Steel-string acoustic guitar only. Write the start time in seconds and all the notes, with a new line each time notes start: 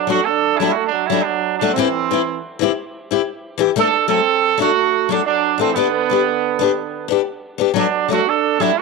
0.07 F#3 A3 D4 F#4
0.60 F#3 A3 D4 F#4
1.10 F#3 A3 D4 F#4
1.61 F#3 A3 D4 F#4
1.76 E3 C4 E4 G4
2.11 E3 C4 E4 G4
2.59 E3 C4 E4 G4
3.11 C4 E4 G4
3.58 E3 E4 G4, muted steel-string acoustic guitar stroke
3.76 A3 D4 A4, muted steel-string acoustic guitar stroke
4.08 F#3 A3 A4
4.58 F#3 A3 D4
4.62 A4
5.09 F#3 A3 D4 A4
5.58 A3 D4 A4, muted steel-string acoustic guitar stroke
5.76 B3 D4 G4
6.10 B3 D4 G4
6.59 B3 D4 G4
7.08 B3 D4 G4
7.58 B3 D4 G4
7.74 F#3 A3 D4 F#4
8.08 F#3 A3 D4, muted steel-string acoustic guitar stroke
8.60 F#3 A3 D4 F#4